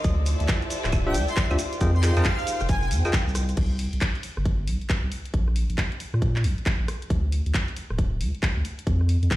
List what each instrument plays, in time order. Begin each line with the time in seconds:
Already playing: string section C6
0.04 sub bass D2, string machine E4 F4 G4 C5, string section D5, kick, closed hi-hat, maracas
0.11 string section A4
0.26 open hi-hat, maracas
0.37 sub bass D2, string section E5, closed hi-hat
0.41 maracas
0.48 kick, clap, closed hi-hat, maracas
0.62 closed hi-hat
0.70 open hi-hat, maracas
0.84 sub bass D1, cross-stick, clap, maracas
0.92 kick, closed hi-hat, claves, maracas
1.07 tine electric piano D4 F4 G4 C5 E5, digital synth lead G5
1.14 sub bass D2, open hi-hat, maracas
1.28 digital synth lead C6, closed hi-hat, maracas
1.37 kick, clap, closed hi-hat, maracas
1.50 sub bass D2, tine electric piano D4 F4 G4 C5 E5, claves, maracas
1.59 string machine D#4 G4 G#4 A#4, string section F4, open hi-hat, maracas
1.64 string section C5
1.73 closed hi-hat, maracas
1.81 sub bass F2, tine electric piano F4 G#4 A#4 D#5 G5, kick, closed hi-hat, maracas
1.95 digital synth lead C6, cross-stick, maracas
2.03 tine electric piano F4 G#4 A#4 D#5 G5, digital synth lead C6, clap, open hi-hat, maracas
2.17 sub bass F2, tine electric piano F4 G#4 A#4 D#5 G5, digital synth lead A#5, closed hi-hat, claves, maracas
2.23 digital synth lead F5, string section G5, kick, clap, closed hi-hat, maracas
2.39 closed hi-hat, maracas
2.47 open hi-hat, maracas
2.60 sub bass F1, cross-stick, maracas
2.69 digital synth lead G#5, kick, closed hi-hat, maracas
2.82 digital synth lead G#5, maracas
2.91 sub bass F2, open hi-hat, maracas
3.05 tine electric piano F4 G#4 A#4 D#5 G5, closed hi-hat, claves, maracas
3.13 kick, clap, closed hi-hat, maracas
3.27 sub bass C2, maracas
3.35 cross-stick, open hi-hat, maracas
3.49 closed hi-hat, maracas
3.57 sub bass C2, kick, closed hi-hat, crash
3.79 open hi-hat
3.93 sub bass C2, closed hi-hat
4.01 kick, clap, closed hi-hat
4.15 closed hi-hat
4.23 open hi-hat
4.37 sub bass G1, cross-stick
4.45 kick, closed hi-hat
4.67 sub bass C2, open hi-hat
4.81 closed hi-hat
4.90 kick, clap, closed hi-hat
5.04 sub bass C2
5.12 open hi-hat
5.26 closed hi-hat
5.34 sub bass A#1, kick, closed hi-hat
5.48 cross-stick
5.56 open hi-hat
5.69 sub bass A#1, closed hi-hat
5.78 kick, clap, closed hi-hat
5.92 closed hi-hat
6.00 open hi-hat
6.14 sub bass A#2, cross-stick
6.22 kick, closed hi-hat
6.36 clap
6.44 sub bass A#1, open hi-hat
6.58 closed hi-hat
6.66 kick, clap, closed hi-hat
6.80 sub bass A#1
6.88 cross-stick, open hi-hat
7.02 closed hi-hat
7.10 sub bass D2, kick, closed hi-hat
7.32 open hi-hat
7.46 sub bass D2, closed hi-hat
7.54 kick, clap, closed hi-hat
7.68 closed hi-hat
7.76 open hi-hat
7.90 sub bass D1, cross-stick
7.98 kick, closed hi-hat
8.21 sub bass D2, open hi-hat
8.35 closed hi-hat
8.43 kick, clap, closed hi-hat
8.57 sub bass D2
8.65 open hi-hat
8.79 closed hi-hat
8.87 sub bass F2, kick, closed hi-hat
9.01 cross-stick
9.09 open hi-hat
9.23 sub bass F2, closed hi-hat
9.31 kick, clap, closed hi-hat